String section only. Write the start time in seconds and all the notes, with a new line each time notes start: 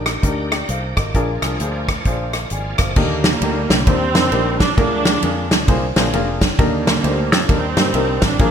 2.97 D3 G3 A#3
3.85 G3 C4
4.58 D4
4.76 F3 G#3 D4
6.60 D3 G3 A#3
7.50 G3 C4
8.23 D4
8.40 F3 G#3 D4